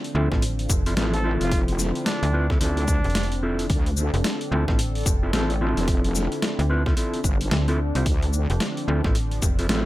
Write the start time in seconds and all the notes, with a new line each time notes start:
Already playing: D3 F3 C4 D4
0.04 closed hi-hat
0.15 D2 C4 E4 F4 A4
0.32 A1 C4 E4 F4 A4, kick, snare
0.42 closed hi-hat
0.59 closed hi-hat
0.70 F1, kick, shaker
0.86 C4 E4 F4 A4, closed hi-hat
0.96 A1 C4 E4 F4 A4, snare, closed hi-hat
1.14 A4, closed hi-hat
1.24 C4 E4 F4 A4
1.41 F1 F4, closed hi-hat
1.51 kick, closed hi-hat
1.68 closed hi-hat
1.79 snare, shaker
1.95 closed hi-hat
2.06 D4, snare, closed hi-hat
2.23 D2, closed hi-hat
2.33 C4 E4 F4 B4
2.50 C4 E4 F4 A4, kick, snare
2.60 D2 C4 D4 E4 F4 A4, closed hi-hat
2.77 closed hi-hat
2.88 kick, shaker
3.04 F1, closed hi-hat
3.10 closed hi-hat
3.15 snare, closed hi-hat
3.23 closed hi-hat
3.32 closed hi-hat
3.43 C4 E4 F4 A4
3.59 closed hi-hat
3.70 D2 A4, kick, closed hi-hat
3.86 closed hi-hat
3.97 shaker
4.14 F1, closed hi-hat
4.24 snare, closed hi-hat
4.41 closed hi-hat
4.51 D2 C4 E4 F4 A4
4.68 A1 C4 E4 F4 A4, kick, snare
4.79 closed hi-hat
4.95 closed hi-hat
4.98 closed hi-hat
5.01 closed hi-hat
5.03 F1, kick, closed hi-hat, shaker
5.23 C4 E4 F4 A4
5.33 A1 C4 E4 F4 A4, snare, closed hi-hat
5.50 closed hi-hat
5.61 C4 E4 F4 A4
5.77 F1, closed hi-hat
5.88 kick, closed hi-hat
6.04 closed hi-hat
6.15 snare, shaker
6.32 closed hi-hat
6.42 snare, closed hi-hat
6.59 D2, closed hi-hat
6.70 C4 E4 F4 B4
6.86 C4 E4 F4 A4, kick, snare
6.97 C4 E4 F4 A4, closed hi-hat
7.14 closed hi-hat
7.24 G1, kick, shaker
7.41 closed hi-hat
7.51 D2, snare, closed hi-hat
7.68 C4 E4 F4 A4, closed hi-hat
7.95 C2 C4 E4 F4 C5, closed hi-hat
8.06 D2 F3, kick, closed hi-hat
8.22 closed hi-hat
8.33 shaker
8.50 F1, closed hi-hat
8.60 snare, closed hi-hat
8.77 closed hi-hat
8.88 D2 C4 E4 F4 A4
9.04 A1 C4 E4 F4 A4, kick, snare
9.15 closed hi-hat
9.31 closed hi-hat
9.42 F1, kick, shaker
9.59 C4 E4 F4 A4, closed hi-hat
9.69 A1 C4 E4 F4 A4, snare, closed hi-hat